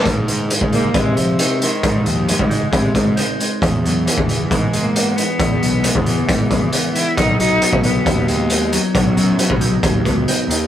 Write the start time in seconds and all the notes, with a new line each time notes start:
0.05 G#2, kick, closed hi-hat
0.28 D#3, closed hi-hat
0.50 G#3, closed hi-hat
0.61 G#2, kick
0.72 A#3 D#4, closed hi-hat
0.94 C3 G#3, kick, closed hi-hat
1.16 F3 C4, closed hi-hat
1.39 D#3 D#4, closed hi-hat
1.61 D#3 G#3, closed hi-hat
1.83 G#2, kick, closed hi-hat
2.05 D#2 D#3 F3, closed hi-hat
2.28 G3 G#3, closed hi-hat
2.39 G#2, kick
2.50 G#3 D#4, closed hi-hat
2.71 C3 G#3, kick, closed hi-hat
2.94 G#2 C4, kick, closed hi-hat
3.16 D#4, closed hi-hat
3.39 G#3, closed hi-hat
3.62 E2, kick, closed hi-hat
3.83 B2 F#3, closed hi-hat
4.06 E3, closed hi-hat
4.17 E2, kick
4.29 closed hi-hat
4.51 G#2 E3 G#3, kick, closed hi-hat
4.73 G#3, closed hi-hat
4.83 A#3
4.95 B3, closed hi-hat
5.17 E3 B3, closed hi-hat
5.39 E2, kick, closed hi-hat
5.61 B1 B2, closed hi-hat
5.82 E3 G#3, closed hi-hat
5.95 E2, kick
6.06 E3 B3, closed hi-hat
6.27 G#2 E3, kick, closed hi-hat
6.50 E2 F#3 G#3, kick, closed hi-hat
6.61 E3
6.72 B3, closed hi-hat
6.94 E3 E4, closed hi-hat
7.17 B1 B2 D#4, kick, closed hi-hat
7.39 F#3 D#4, closed hi-hat
7.61 F#3, closed hi-hat
7.73 B1, kick
7.83 B3 D#4, closed hi-hat
8.06 D#2 F#3, kick, closed hi-hat
8.26 G#3 B3, closed hi-hat
8.49 D#4, closed hi-hat
8.71 F#3, closed hi-hat
8.94 B1 B2, kick, closed hi-hat
9.16 F#2 F#3, closed hi-hat
9.39 F#3, closed hi-hat
9.50 B1, kick
9.61 D#4, closed hi-hat
9.83 D#2 F#3, kick, closed hi-hat
10.05 C#2 B3, kick, closed hi-hat
10.28 D#4, closed hi-hat
10.48 D#2 D#3, closed hi-hat